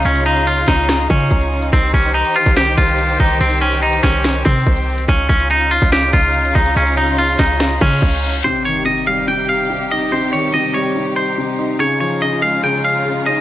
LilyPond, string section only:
\new Staff \with { instrumentName = "String section" } { \time 4/4 \key c \phrygian \tempo 4 = 143 << { <des des' f'>1 | <ees g' c''>1~ | <ees g' c''>1 | <des des' f'>1~ |
<des des' f'>1 | <c g g'>1~ | <c g g'>1 | <des des' f'>1 | } \\ { ees'1~ | ees'1~ | ees'1 | ees'1~ |
ees'1 | ees'1~ | ees'1~ | ees'1 | } >> }